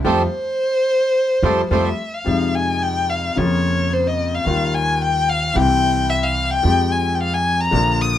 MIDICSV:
0, 0, Header, 1, 6, 480
1, 0, Start_track
1, 0, Key_signature, -4, "minor"
1, 0, Tempo, 553506
1, 41, Time_signature, 4, 2, 24, 8
1, 2921, Tempo, 544959
1, 7161, End_track
2, 0, Start_track
2, 0, Title_t, "Violin"
2, 0, Program_c, 0, 40
2, 41, Note_on_c, 0, 72, 97
2, 1445, Note_off_c, 0, 72, 0
2, 1487, Note_on_c, 0, 72, 63
2, 1605, Note_on_c, 0, 76, 59
2, 1618, Note_off_c, 0, 72, 0
2, 1854, Note_on_c, 0, 77, 67
2, 1867, Note_off_c, 0, 76, 0
2, 2212, Note_on_c, 0, 80, 74
2, 2225, Note_off_c, 0, 77, 0
2, 2451, Note_on_c, 0, 79, 83
2, 2464, Note_off_c, 0, 80, 0
2, 2682, Note_on_c, 0, 77, 72
2, 2695, Note_off_c, 0, 79, 0
2, 2930, Note_on_c, 0, 73, 87
2, 2943, Note_off_c, 0, 77, 0
2, 3418, Note_on_c, 0, 72, 74
2, 3431, Note_off_c, 0, 73, 0
2, 3542, Note_on_c, 0, 75, 69
2, 3555, Note_off_c, 0, 72, 0
2, 3784, Note_on_c, 0, 77, 77
2, 3798, Note_off_c, 0, 75, 0
2, 4135, Note_on_c, 0, 80, 82
2, 4148, Note_off_c, 0, 77, 0
2, 4375, Note_on_c, 0, 79, 88
2, 4388, Note_off_c, 0, 80, 0
2, 4613, Note_on_c, 0, 77, 84
2, 4626, Note_off_c, 0, 79, 0
2, 4854, Note_on_c, 0, 79, 105
2, 4867, Note_off_c, 0, 77, 0
2, 5325, Note_on_c, 0, 76, 88
2, 5338, Note_off_c, 0, 79, 0
2, 5444, Note_on_c, 0, 77, 83
2, 5458, Note_off_c, 0, 76, 0
2, 5686, Note_on_c, 0, 79, 97
2, 5699, Note_off_c, 0, 77, 0
2, 6045, Note_on_c, 0, 80, 81
2, 6058, Note_off_c, 0, 79, 0
2, 6250, Note_on_c, 0, 79, 59
2, 6263, Note_off_c, 0, 80, 0
2, 6298, Note_on_c, 0, 77, 90
2, 6311, Note_off_c, 0, 79, 0
2, 6420, Note_on_c, 0, 80, 85
2, 6433, Note_off_c, 0, 77, 0
2, 6655, Note_on_c, 0, 82, 98
2, 6668, Note_off_c, 0, 80, 0
2, 7012, Note_on_c, 0, 87, 84
2, 7026, Note_off_c, 0, 82, 0
2, 7161, Note_off_c, 0, 87, 0
2, 7161, End_track
3, 0, Start_track
3, 0, Title_t, "Bandoneon"
3, 0, Program_c, 1, 23
3, 42, Note_on_c, 1, 67, 83
3, 43, Note_on_c, 1, 72, 88
3, 46, Note_on_c, 1, 69, 83
3, 195, Note_off_c, 1, 67, 0
3, 195, Note_off_c, 1, 72, 0
3, 197, Note_off_c, 1, 69, 0
3, 1249, Note_on_c, 1, 67, 77
3, 1251, Note_on_c, 1, 72, 75
3, 1253, Note_on_c, 1, 69, 75
3, 1400, Note_off_c, 1, 67, 0
3, 1401, Note_off_c, 1, 72, 0
3, 1402, Note_off_c, 1, 69, 0
3, 1490, Note_on_c, 1, 69, 63
3, 1492, Note_on_c, 1, 72, 70
3, 1495, Note_on_c, 1, 67, 64
3, 1641, Note_off_c, 1, 69, 0
3, 1642, Note_off_c, 1, 72, 0
3, 1644, Note_off_c, 1, 67, 0
3, 7161, End_track
4, 0, Start_track
4, 0, Title_t, "String section"
4, 0, Program_c, 2, 48
4, 42, Note_on_c, 2, 65, 87
4, 43, Note_on_c, 2, 57, 86
4, 43, Note_on_c, 2, 60, 87
4, 195, Note_off_c, 2, 57, 0
4, 195, Note_off_c, 2, 60, 0
4, 195, Note_off_c, 2, 65, 0
4, 1240, Note_on_c, 2, 57, 73
4, 1240, Note_on_c, 2, 60, 72
4, 1241, Note_on_c, 2, 65, 68
4, 1394, Note_off_c, 2, 57, 0
4, 1394, Note_off_c, 2, 60, 0
4, 1394, Note_off_c, 2, 65, 0
4, 1481, Note_on_c, 2, 57, 77
4, 1481, Note_on_c, 2, 60, 79
4, 1484, Note_on_c, 2, 65, 83
4, 1635, Note_off_c, 2, 60, 0
4, 1636, Note_off_c, 2, 57, 0
4, 1637, Note_off_c, 2, 65, 0
4, 7161, End_track
5, 0, Start_track
5, 0, Title_t, "Grand piano"
5, 0, Program_c, 3, 0
5, 39, Note_on_c, 3, 53, 82
5, 41, Note_on_c, 3, 55, 80
5, 42, Note_on_c, 3, 57, 78
5, 193, Note_off_c, 3, 53, 0
5, 194, Note_off_c, 3, 55, 0
5, 195, Note_off_c, 3, 57, 0
5, 1242, Note_on_c, 3, 53, 78
5, 1242, Note_on_c, 3, 55, 82
5, 1242, Note_on_c, 3, 57, 77
5, 1395, Note_off_c, 3, 53, 0
5, 1395, Note_off_c, 3, 55, 0
5, 1395, Note_off_c, 3, 57, 0
5, 1482, Note_on_c, 3, 53, 72
5, 1485, Note_on_c, 3, 55, 77
5, 1485, Note_on_c, 3, 57, 76
5, 1636, Note_off_c, 3, 53, 0
5, 1638, Note_off_c, 3, 55, 0
5, 1638, Note_off_c, 3, 57, 0
5, 1948, Note_on_c, 3, 48, 50
5, 1958, Note_on_c, 3, 53, 60
5, 1963, Note_on_c, 3, 41, 53
5, 1969, Note_on_c, 3, 56, 46
5, 1981, Note_on_c, 3, 63, 52
5, 2865, Note_off_c, 3, 48, 0
5, 2873, Note_off_c, 3, 41, 0
5, 2874, Note_off_c, 3, 53, 0
5, 2876, Note_off_c, 3, 56, 0
5, 2882, Note_off_c, 3, 63, 0
5, 2915, Note_on_c, 3, 49, 54
5, 2928, Note_on_c, 3, 53, 64
5, 2935, Note_on_c, 3, 41, 59
5, 2936, Note_on_c, 3, 58, 49
5, 2951, Note_on_c, 3, 65, 60
5, 3835, Note_off_c, 3, 49, 0
5, 3843, Note_off_c, 3, 53, 0
5, 3845, Note_off_c, 3, 41, 0
5, 3845, Note_off_c, 3, 58, 0
5, 3853, Note_off_c, 3, 65, 0
5, 3872, Note_on_c, 3, 51, 52
5, 3885, Note_off_c, 3, 51, 0
5, 3886, Note_on_c, 3, 55, 45
5, 3890, Note_on_c, 3, 39, 58
5, 3893, Note_on_c, 3, 51, 60
5, 3895, Note_on_c, 3, 58, 50
5, 3908, Note_on_c, 3, 65, 55
5, 4796, Note_off_c, 3, 55, 0
5, 4798, Note_off_c, 3, 39, 0
5, 4799, Note_off_c, 3, 51, 0
5, 4800, Note_off_c, 3, 58, 0
5, 4807, Note_off_c, 3, 65, 0
5, 4833, Note_on_c, 3, 52, 62
5, 4845, Note_on_c, 3, 55, 48
5, 4849, Note_on_c, 3, 36, 64
5, 4851, Note_on_c, 3, 48, 63
5, 4856, Note_on_c, 3, 60, 51
5, 4868, Note_on_c, 3, 67, 62
5, 5749, Note_off_c, 3, 52, 0
5, 5755, Note_off_c, 3, 55, 0
5, 5757, Note_off_c, 3, 36, 0
5, 5758, Note_off_c, 3, 48, 0
5, 5760, Note_off_c, 3, 60, 0
5, 5766, Note_off_c, 3, 67, 0
5, 5794, Note_on_c, 3, 53, 57
5, 5802, Note_on_c, 3, 56, 45
5, 5807, Note_off_c, 3, 53, 0
5, 5811, Note_on_c, 3, 41, 58
5, 5812, Note_on_c, 3, 53, 61
5, 5817, Note_on_c, 3, 60, 50
5, 5829, Note_on_c, 3, 67, 61
5, 6712, Note_off_c, 3, 56, 0
5, 6717, Note_off_c, 3, 41, 0
5, 6717, Note_off_c, 3, 53, 0
5, 6720, Note_off_c, 3, 60, 0
5, 6726, Note_off_c, 3, 67, 0
5, 6747, Note_on_c, 3, 50, 58
5, 6756, Note_on_c, 3, 53, 53
5, 6762, Note_on_c, 3, 34, 65
5, 6763, Note_on_c, 3, 46, 66
5, 6768, Note_on_c, 3, 58, 50
5, 6781, Note_on_c, 3, 65, 63
5, 7161, Note_off_c, 3, 34, 0
5, 7161, Note_off_c, 3, 46, 0
5, 7161, Note_off_c, 3, 50, 0
5, 7161, Note_off_c, 3, 53, 0
5, 7161, Note_off_c, 3, 58, 0
5, 7161, Note_off_c, 3, 65, 0
5, 7161, End_track
6, 0, Start_track
6, 0, Title_t, "Upright bass"
6, 0, Program_c, 4, 32
6, 40, Note_on_c, 4, 41, 74
6, 218, Note_off_c, 4, 41, 0
6, 1236, Note_on_c, 4, 41, 77
6, 1417, Note_off_c, 4, 41, 0
6, 1481, Note_on_c, 4, 41, 63
6, 1661, Note_off_c, 4, 41, 0
6, 1965, Note_on_c, 4, 41, 64
6, 2874, Note_off_c, 4, 41, 0
6, 2926, Note_on_c, 4, 41, 68
6, 3840, Note_off_c, 4, 41, 0
6, 3887, Note_on_c, 4, 39, 65
6, 4796, Note_off_c, 4, 39, 0
6, 4847, Note_on_c, 4, 36, 73
6, 5756, Note_off_c, 4, 36, 0
6, 5805, Note_on_c, 4, 41, 71
6, 6714, Note_off_c, 4, 41, 0
6, 6758, Note_on_c, 4, 34, 73
6, 7161, Note_off_c, 4, 34, 0
6, 7161, End_track
0, 0, End_of_file